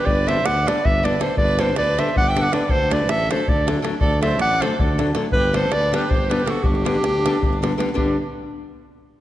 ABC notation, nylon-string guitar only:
X:1
M:7/8
L:1/8
Q:1/4=160
K:G
V:1 name="Nylon-string guitar" clef=bass
z [D,G,B,D] z [D,G,B,D] z [D,G,B,D] [D,G,B,D] | z [D,G,B,D] z [D,G,B,D] z [D,G,B,D] [D,G,B,D] | z [D,F,A,D] z [D,F,A,D] z [D,F,A,D] [D,F,A,D] | z [D,F,A,D] z [D,F,A,D] z [D,F,A,D] [D,F,A,D] |
z [D,G,B,D] z [D,G,B,D] z [D,G,B,D] [D,G,B,D] | z [D,G,B,D] z [D,G,B,D] z [D,G,B,D] [D,G,B,D] | [D,G,B,D] z6 |]